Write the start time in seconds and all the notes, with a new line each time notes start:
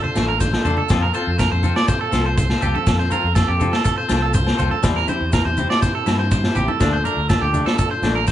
Already playing: D4 F4 A4
0.04 C5, low conga
0.15 A1 A3, muted clean electric guitar stroke, snare, high conga, low agogo, maracas
0.28 A#4
0.40 C5, kick, snare, high conga, maracas
0.53 snare, high conga, low agogo
0.65 E2 A3 D4 A4 C5, low conga, maracas
0.77 A4, low conga
0.89 F2 F3 C4 F4 A4, kick, snare, low agogo, maracas
1.02 A#4
1.14 C4 F4 A4 C5, maracas
1.27 F2
1.39 A#4, kick, snare, low agogo, maracas
1.52 F2 C5
1.63 C4 F4 A4, high conga, low conga, maracas
1.76 D5, snare, low agogo
1.88 C5, kick, snare, maracas
2.01 A4
2.12 C2 C4 F4 A4, snare, high conga, low agogo, maracas
2.26 C5
2.37 C5, kick, snare, maracas
2.50 snare, low agogo
2.61 C2 C4 F4 G4 A4, low conga, maracas
2.75 A4, high conga
2.87 F2, kick, snare, low agogo, maracas
2.99 C5, snare
3.10 C4 F4 A4 A#4, high conga, maracas
3.24 F2
3.35 A4, kick, snare, low agogo, maracas
3.48 F2 G4
3.60 C4 F4 A4, high conga, low conga, maracas
3.73 A4, snare, low agogo
3.85 A4, kick, snare, maracas
3.98 C5
4.09 C2 C4 F4 A4, snare, high conga, low agogo, maracas
4.22 A4
4.34 C5, kick, maracas
4.47 snare, low agogo
4.58 C2 C4 F4 A4 C5, low conga, maracas
4.71 A4, high conga
4.82 E2 G3 C4 E4 G4, kick, snare, low agogo, maracas
4.96 A#4, snare
5.08 C4 E4 C5, high conga, maracas
5.21 E2
5.32 A#4, kick, snare, low agogo, maracas
5.45 E2 C5
5.57 C4 E4, high conga, low conga, maracas
5.70 D5, snare, low agogo
5.82 C5, kick, snare, maracas
5.95 A4
6.06 G2 C4 E4, snare, high conga, low agogo, maracas
6.19 C5
6.31 C5, kick, snare, maracas
6.44 snare, low agogo
6.55 A1 C4 E4 G4, low conga, maracas
6.68 A4, high conga
6.80 D2 F3 A3 D4 F4 A4, kick, snare, low agogo, maracas
6.93 C5
7.04 A3 D4 A#4, high conga, maracas
7.17 D2
7.29 A4, kick, snare, low agogo, maracas
7.41 D2 G4
7.53 A3 D4, high conga, low conga, maracas
7.66 A4, snare, low agogo
7.78 A4, kick, maracas
7.91 C5
8.02 A1 A3 D4, snare, high conga, low agogo, maracas
8.15 A#4
8.27 C5, kick, snare, maracas